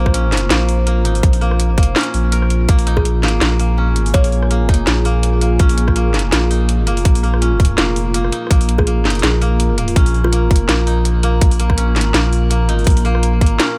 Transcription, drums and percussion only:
0.06 kick, cross-stick
0.14 closed hi-hat
0.32 snare, closed hi-hat
0.37 closed hi-hat
0.50 snare, closed hi-hat
0.69 open hi-hat
0.87 closed hi-hat
1.05 closed hi-hat
1.15 open hi-hat
1.23 kick, closed hi-hat
1.33 open hi-hat
1.41 open hi-hat
1.51 cross-stick
1.60 closed hi-hat
1.78 kick, closed hi-hat
1.83 closed hi-hat
1.96 snare, closed hi-hat
1.98 closed hi-hat
2.01 closed hi-hat
2.03 closed hi-hat
2.14 open hi-hat
2.32 closed hi-hat
2.42 cross-stick
2.50 closed hi-hat
2.69 kick, closed hi-hat
2.79 open hi-hat
2.87 closed hi-hat
2.97 kick, cross-stick
3.05 closed hi-hat
3.23 snare, closed hi-hat
3.28 closed hi-hat
3.41 snare, closed hi-hat
3.59 open hi-hat
3.96 closed hi-hat
4.06 open hi-hat
4.14 kick, closed hi-hat
4.24 open hi-hat
4.32 open hi-hat
4.43 cross-stick
4.51 closed hi-hat
4.69 kick, closed hi-hat
4.74 closed hi-hat
4.87 snare, closed hi-hat
5.05 open hi-hat
5.23 closed hi-hat
5.41 closed hi-hat
5.59 kick, closed hi-hat
5.69 open hi-hat
5.78 closed hi-hat
5.88 kick, cross-stick
5.96 closed hi-hat
6.14 snare, closed hi-hat
6.19 closed hi-hat
6.32 snare, closed hi-hat
6.51 open hi-hat
6.69 closed hi-hat
6.87 closed hi-hat
6.97 open hi-hat
7.05 kick, closed hi-hat
7.15 open hi-hat
7.24 open hi-hat
7.34 cross-stick
7.42 closed hi-hat
7.60 kick, closed hi-hat
7.65 closed hi-hat
7.78 snare, closed hi-hat
7.96 open hi-hat
8.14 closed hi-hat
8.24 cross-stick
8.32 closed hi-hat
8.47 kick, cross-stick, closed hi-hat
8.61 open hi-hat
8.69 closed hi-hat
8.79 kick, cross-stick
8.87 closed hi-hat
9.05 snare, closed hi-hat
9.10 closed hi-hat
9.15 closed hi-hat
9.19 closed hi-hat
9.23 snare, closed hi-hat
9.42 open hi-hat
9.60 closed hi-hat
9.78 closed hi-hat
9.88 open hi-hat
9.96 kick, closed hi-hat
10.06 open hi-hat
10.14 open hi-hat
10.24 cross-stick
10.33 closed hi-hat
10.51 kick, closed hi-hat
10.56 closed hi-hat
10.69 snare, closed hi-hat
10.87 open hi-hat
11.05 closed hi-hat
11.23 closed hi-hat
11.41 kick, closed hi-hat
11.51 open hi-hat
11.60 closed hi-hat
11.70 kick, cross-stick
11.78 closed hi-hat
11.96 snare, closed hi-hat
12.01 closed hi-hat
12.14 snare, closed hi-hat
12.33 open hi-hat
12.51 closed hi-hat
12.69 closed hi-hat
12.79 open hi-hat
12.84 kick, closed hi-hat, open hi-hat
12.90 open hi-hat
12.97 open hi-hat
13.05 open hi-hat
13.15 cross-stick
13.23 closed hi-hat
13.41 kick, closed hi-hat
13.46 closed hi-hat
13.60 snare, closed hi-hat

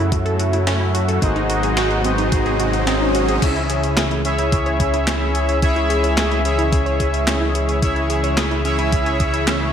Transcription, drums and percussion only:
0.12 kick, closed hi-hat
0.26 closed hi-hat
0.40 closed hi-hat
0.53 closed hi-hat
0.67 snare, closed hi-hat
0.95 closed hi-hat
1.09 closed hi-hat
1.22 kick, closed hi-hat
1.36 closed hi-hat
1.50 closed hi-hat
1.63 closed hi-hat
1.77 snare, closed hi-hat
1.91 closed hi-hat
2.04 closed hi-hat
2.18 closed hi-hat
2.32 kick, closed hi-hat
2.46 closed hi-hat
2.60 closed hi-hat
2.73 closed hi-hat
2.87 snare, closed hi-hat
3.15 closed hi-hat
3.28 closed hi-hat
3.42 kick, closed hi-hat, crash
3.56 closed hi-hat
3.70 closed hi-hat
3.83 closed hi-hat
3.97 snare, clap, closed hi-hat
4.11 closed hi-hat
4.25 closed hi-hat
4.39 closed hi-hat
4.52 kick, closed hi-hat
4.66 closed hi-hat
4.80 kick, closed hi-hat
4.94 closed hi-hat
5.07 snare, clap, closed hi-hat
5.35 closed hi-hat
5.49 closed hi-hat
5.62 kick, closed hi-hat
5.76 closed hi-hat
5.90 closed hi-hat
6.04 closed hi-hat
6.18 snare, clap, closed hi-hat
6.31 closed hi-hat
6.45 closed hi-hat
6.59 closed hi-hat
6.72 kick, closed hi-hat
6.86 closed hi-hat
7.00 kick, closed hi-hat
7.14 closed hi-hat
7.27 snare, clap, closed hi-hat
7.55 closed hi-hat
7.69 closed hi-hat
7.82 kick, closed hi-hat
7.96 closed hi-hat
8.10 closed hi-hat
8.24 closed hi-hat
8.37 snare, clap, closed hi-hat
8.51 closed hi-hat
8.65 closed hi-hat
8.79 closed hi-hat
8.92 kick, closed hi-hat
9.06 closed hi-hat
9.20 kick, closed hi-hat
9.34 closed hi-hat
9.47 snare, clap, closed hi-hat

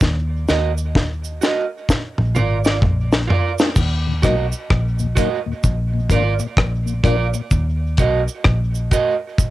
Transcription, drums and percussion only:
0.01 kick, snare, cabasa
0.48 snare, cabasa
0.78 cabasa
0.95 kick, snare
1.24 cabasa
1.42 snare, cabasa
1.89 kick, snare, cabasa
2.18 mid tom
2.35 mid tom, cabasa
2.65 snare, cabasa
2.82 kick, floor tom
3.12 snare, cabasa
3.30 floor tom
3.58 snare, cabasa
3.76 kick, crash, cabasa
4.23 kick, cross-stick, closed hi-hat, cabasa
4.52 cabasa
4.70 kick, cross-stick
4.99 cabasa
5.17 kick, closed hi-hat, cabasa
5.64 kick, cabasa
6.10 kick, closed hi-hat, cabasa
6.39 cabasa
6.57 kick, cross-stick
6.87 cabasa
7.04 kick, closed hi-hat
7.34 cabasa
7.51 kick, cabasa
7.97 kick, closed hi-hat, cabasa
8.28 cabasa
8.44 kick, cross-stick
8.75 cabasa
8.91 kick, closed hi-hat, cabasa
9.38 kick, cabasa

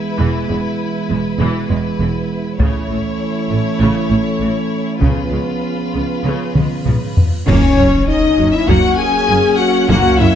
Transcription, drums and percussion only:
2.60 taiko
5.01 taiko
6.55 taiko mid
6.86 taiko low-mid
7.17 taiko low
7.48 concert bass drum, taiko, crash
8.69 taiko
9.90 taiko

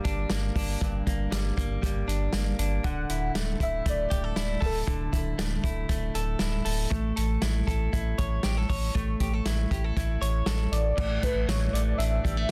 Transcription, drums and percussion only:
0.05 kick, closed hi-hat
0.30 snare, closed hi-hat
0.56 kick, open hi-hat
0.81 kick, closed hi-hat
1.07 kick, closed hi-hat
1.32 snare, closed hi-hat
1.58 kick, closed hi-hat
1.83 kick, closed hi-hat
2.09 closed hi-hat
2.33 snare, closed hi-hat
2.59 closed hi-hat
2.84 kick, closed hi-hat
3.10 closed hi-hat
3.35 snare, closed hi-hat
3.60 kick, closed hi-hat
3.86 kick, closed hi-hat
4.11 kick, closed hi-hat
4.36 snare, closed hi-hat
4.62 kick, open hi-hat
4.87 kick, closed hi-hat
5.13 kick, closed hi-hat
5.39 snare, closed hi-hat
5.64 kick, closed hi-hat
5.89 kick, closed hi-hat
6.15 closed hi-hat
6.39 snare, closed hi-hat
6.65 open hi-hat
6.91 kick, closed hi-hat
7.17 closed hi-hat
7.42 snare, closed hi-hat
7.68 kick, closed hi-hat
7.93 kick, closed hi-hat
8.18 kick, closed hi-hat
8.43 snare, closed hi-hat
8.70 kick, open hi-hat
8.95 kick, closed hi-hat
9.20 kick, closed hi-hat
9.46 snare, closed hi-hat
9.71 kick, closed hi-hat
9.97 kick, closed hi-hat
10.22 closed hi-hat
10.46 snare, closed hi-hat
10.73 closed hi-hat
10.98 kick, crash
11.23 kick, closed hi-hat
11.49 snare, closed hi-hat
11.75 closed hi-hat
12.00 closed hi-hat
12.25 kick, closed hi-hat

